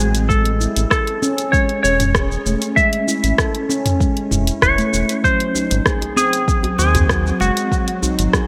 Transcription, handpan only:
0.00 G#3
0.30 G#3
0.61 E4
0.91 A4
1.22 C#4
1.53 G#3
1.84 C#5
2.15 G#4
2.46 A3
2.77 G#3
3.08 E4
3.39 A4
3.69 C#4
4.00 G#3
4.31 E4
4.62 E4
4.78 A3
4.93 E4
5.24 F#3
5.55 D#4
5.86 G#4
6.17 C4
6.48 C4
6.79 C5
7.09 F#4
7.41 G#3
7.72 F#3
8.03 D#4
8.33 G#4

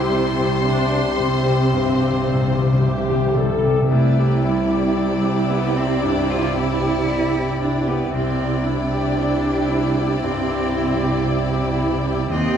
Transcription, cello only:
3.90 A3
4.44 G3
5.50 B3
5.77 C4
6.03 D4
6.30 F4
6.56 E4
7.62 D4
7.88 B3
8.13 C4
8.64 D4
10.22 C4
12.30 C4

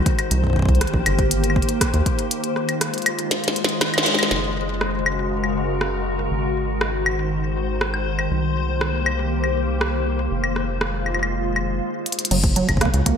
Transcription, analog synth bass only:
0.31 C2
0.69 C2
0.94 A#1
1.06 G1
1.94 D#2
4.31 F#1
6.31 G#1
8.31 C2
10.31 F1
12.31 F#1
12.69 F#1
12.94 C#2
13.06 C#2

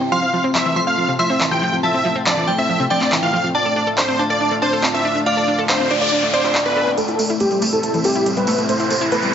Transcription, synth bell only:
0.12 C6
0.76 C6
1.19 C6
1.83 A5
2.48 G5
2.90 G5
3.55 A5
4.19 A5
4.62 A5
5.26 F5
5.91 D5
6.34 D5

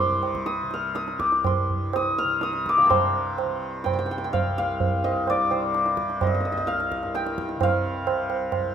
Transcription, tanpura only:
Already playing: C2 G2 C3
0.10 C3
0.63 C3
1.18 C2
1.73 G2
2.24 C3
2.78 C3
2.92 G2
3.44 C3
3.95 C3
4.47 C2
4.99 G2
5.51 C3
6.01 C3
6.53 C2
7.04 G2
7.56 C3
8.06 C3
8.55 C2

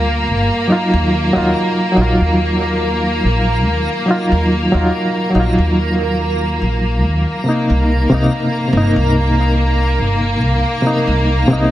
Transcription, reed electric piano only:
Already playing: G3 F4 A#4
0.67 F#3 D#4
0.72 F4
1.33 F#3 D#4
1.38 F4
1.92 F#3
1.96 D#4
2.01 F4
4.06 F#3 D#4
4.11 F4
4.72 F#3 D#4
4.77 F4
5.30 F#3
5.35 D#4
5.40 F4
7.44 C3 A#3
7.49 D#4
8.10 C3 A#3
8.14 D#4
8.68 C3
8.73 A#3
8.78 D#4
10.82 C3 A#3
10.87 D#4
11.48 C3 A#3
11.53 D#4

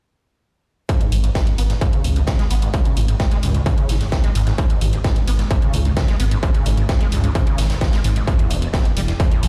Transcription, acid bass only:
0.89 G#2
1.00 G#2
1.12 G2
1.24 G#1
1.35 G#2
1.47 G2
1.58 B3
1.70 G#2
1.81 G#2
1.93 C#3
2.04 G2
2.16 G#1
2.27 G#2
2.39 G#3
2.50 B3
2.62 G#2
2.74 G#2
2.85 C#3
2.97 G2
3.08 G#1
3.20 G#2
3.31 G#3
3.43 G2
3.54 G#2
3.66 G#2
3.78 C#3
3.89 G2
4.01 G#1
4.12 G#2
4.24 G#3
4.35 G#2
4.47 G#2
4.58 G#2
4.70 G#2
4.81 G2
4.93 G#1
5.04 G#2
5.16 G2
5.27 B3
5.39 G#2
5.50 G#2
5.62 C#3
5.74 G2
5.85 G#1
5.97 G#2
6.08 G#3
6.20 B3
6.31 G#2
6.43 G#2
6.54 C#3
6.66 G2
6.77 G#1
6.89 G#2
7.01 G#3
7.12 G2
7.24 G#2
7.35 G#2
7.47 C#3
7.58 G2
7.70 G#1
7.81 G#2
7.93 G#3
8.04 G#2
8.16 G#2
8.27 E2
8.39 E2
8.50 D2
8.62 E1
8.74 E2
8.85 D2
8.97 G3
9.08 E2
9.20 E2
9.31 A2
9.43 D2

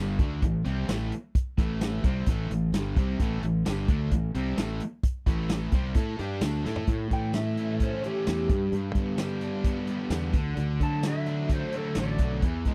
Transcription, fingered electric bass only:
Already playing: G1
0.19 D2
0.42 A1
0.66 C2
0.89 A1
1.58 A1
2.03 C2
2.27 A1
2.50 A1
2.72 G1
2.96 C2
3.20 A1
3.43 A1
3.66 G1
3.88 D2
4.11 A1
4.35 C2
4.58 A1
5.26 A1
5.72 C2
5.95 A2
6.19 G2
6.41 D2
6.66 A2
6.88 A2
7.11 A2
8.27 E2
8.49 G2
8.72 G2
8.95 G3
10.10 E2
10.33 D2
10.57 D2
10.80 D3
11.97 A1
12.19 B1
12.42 E2
12.66 E3

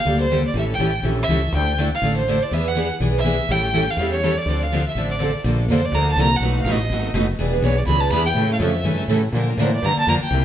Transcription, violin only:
Already playing: F5
0.21 C5
0.47 D5
0.59 E5
0.74 G5
1.23 E5
1.57 G5
1.95 F5
2.18 C5
2.43 D5
2.53 E5
2.68 F#5
3.19 E5
3.52 G5
3.91 F5
4.13 C#5
4.38 D5
4.63 F5
4.89 E5
5.11 D5
5.70 C5
5.85 D5
5.95 A#5
6.12 A5
6.23 A#5
6.36 F#5
6.61 F5
6.71 D#5
7.65 C#5
7.78 D5
7.88 B5
8.01 A5
8.13 B5
8.26 G5
8.53 F5
8.63 E5
9.63 C5
9.75 D5
9.85 A#5
9.99 A5
10.09 A#5
10.23 G5

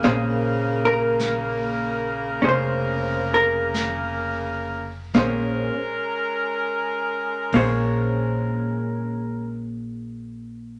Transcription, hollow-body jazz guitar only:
0.04 A#3 C#4 G#4 C5
0.85 A#4
2.42 C#4 G#4 C5
2.49 C5
3.34 A#4
5.15 A#3 C#4 G#4 C5
7.54 A#3 C#4 G#4 C5

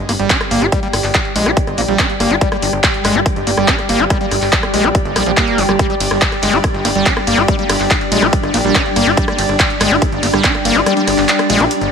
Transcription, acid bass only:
0.09 A#3
0.19 G3
0.30 D4
0.51 A#3
0.62 G4
0.72 G3
0.83 G3
1.36 G#3
1.46 G4
1.78 A#3
1.89 G3
1.99 D4
2.20 A#3
2.31 G4
2.41 G3
2.52 G3
3.05 G#3
3.15 G4
3.47 A#3
3.58 G3
3.68 D4
3.89 A#3
4.00 G4
4.10 G3
4.21 G3
4.74 G#3
4.84 G4
5.16 G3
5.27 F3
5.37 A#3
5.58 F3
5.69 G3
5.79 G3
5.90 G3
6.43 G#3
6.53 G4
6.85 A#3
6.96 G3
7.06 D4
7.27 A#3
7.38 G4
7.48 G3
7.59 G3
8.12 G#3
8.22 G4
8.54 A#3
8.65 G3
8.75 D4
8.96 A#3
9.07 G4
9.17 G3
9.28 G3
9.81 G#3
9.91 G4
10.23 A#3
10.34 G3
10.44 D4
10.65 A#3
10.76 G4
10.86 G3
10.97 G3
11.50 G#3
11.60 G4

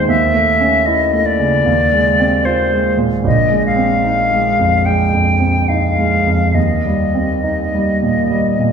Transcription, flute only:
0.08 E5
0.86 D#5
1.26 D5
2.45 C5
3.26 D#5
3.67 F5
4.86 G5
5.68 F5
6.55 D#5

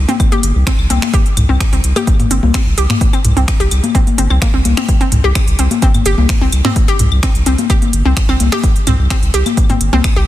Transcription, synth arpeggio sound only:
0.09 C4
0.32 G4
0.67 C4
0.90 C4
1.14 G4
1.49 C4
1.73 C4
1.96 G4
2.31 C4
2.54 C4
2.78 G4
3.13 C4
3.37 C4
3.60 G4
3.95 C4
4.18 C4
4.30 C4
4.42 A#3
4.54 C4
4.77 C4
5.01 C4
5.24 G4
5.59 C4
5.82 C4
6.06 G4
6.41 C4
6.65 C4
6.88 G4
7.23 C4
7.46 C4
7.70 G4
8.05 C4
8.29 C4
8.52 G4
8.87 C4
9.10 C4
9.34 G4
9.70 C4
9.93 C4
10.16 G4

